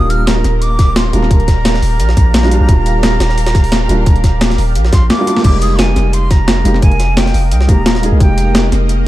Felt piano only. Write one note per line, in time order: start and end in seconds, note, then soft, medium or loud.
0.00 1.10 G3 medium
0.00 1.11 A#3 medium
0.00 1.12 D4 medium
0.00 1.13 F4 loud
1.12 1.27 G3 medium
1.12 1.29 A#3 medium
1.12 1.29 D4 medium
1.12 1.30 F4 loud
1.29 1.39 G3 medium
1.29 1.40 A#3 medium
1.29 1.40 D4 medium
1.29 1.41 A#4 medium
2.42 2.48 G3 loud
2.42 2.49 A#3 medium
2.42 2.51 D4 medium
2.42 2.51 F4 loud
2.50 2.64 G3 loud
2.50 2.66 A#3 medium
2.50 2.67 D4 medium
2.50 2.68 F4 loud
2.66 3.86 G3 medium
2.66 3.87 A#3 medium
2.70 3.88 D4 medium
2.70 3.89 F4 loud
3.88 4.03 G3 loud
3.88 4.04 A#3 medium
3.88 4.05 D4 medium
3.88 4.05 F4 loud
4.05 4.15 G3 medium
4.05 4.16 A#3 medium
4.05 4.16 D4 medium
4.05 4.17 A#4 medium
5.18 5.24 G3 loud
5.18 5.25 A#3 medium
5.18 5.26 D4 medium
5.18 5.27 F4 loud
5.26 5.42 G3 medium
5.26 5.42 A#3 medium
5.26 5.43 D4 medium
5.26 5.43 F4 loud
5.41 6.62 G#3 medium
5.41 6.63 A#3 medium
5.46 6.65 G3 loud
5.46 6.64 D#4 medium
6.64 6.79 G#3 medium
6.64 6.80 A#3 medium
6.64 6.81 D#4 medium
6.64 6.81 G4 loud
6.81 6.91 G#3 medium
6.81 6.92 A#3 medium
6.81 6.92 D#4 medium
6.81 6.93 A#4 medium
7.67 7.77 G#3 loud
7.67 7.78 A#3 medium
7.67 7.78 D#4 medium
7.67 7.79 G4 loud
8.02 8.16 G#3 medium
8.02 8.18 A#3 medium
8.02 8.19 D#4 medium
8.02 8.19 G#4 medium
8.17 9.08 G#3 loud
8.17 9.08 A#3 medium
8.21 9.08 D#4 medium
8.21 9.08 G4 loud